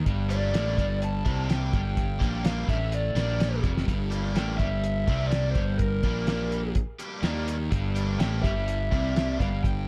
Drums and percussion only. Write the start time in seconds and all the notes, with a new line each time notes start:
0.06 kick, closed hi-hat
0.30 closed hi-hat
0.54 snare, closed hi-hat
0.78 kick, closed hi-hat
1.02 closed hi-hat
1.26 kick, closed hi-hat
1.50 snare, closed hi-hat
1.73 kick, closed hi-hat
1.97 kick, closed hi-hat
2.21 kick, closed hi-hat
2.45 snare, closed hi-hat
2.69 kick, closed hi-hat
2.92 closed hi-hat
3.16 snare, closed hi-hat
3.40 snare, closed hi-hat
3.64 kick, closed hi-hat
3.77 snare
3.88 kick, closed hi-hat
4.12 closed hi-hat
4.36 snare, closed hi-hat
4.60 kick, closed hi-hat
4.84 closed hi-hat
5.08 kick, closed hi-hat
5.31 snare, closed hi-hat
5.55 kick, closed hi-hat
5.79 kick, closed hi-hat
6.03 kick, closed hi-hat
6.27 snare, closed hi-hat
6.52 closed hi-hat
6.75 kick, closed hi-hat
6.99 closed hi-hat
7.23 snare, closed hi-hat
7.48 closed hi-hat
7.72 kick, closed hi-hat
7.96 closed hi-hat
8.20 snare, closed hi-hat
8.44 kick, closed hi-hat
8.68 closed hi-hat
8.92 kick, closed hi-hat
9.16 snare, closed hi-hat
9.40 kick, closed hi-hat
9.64 kick, closed hi-hat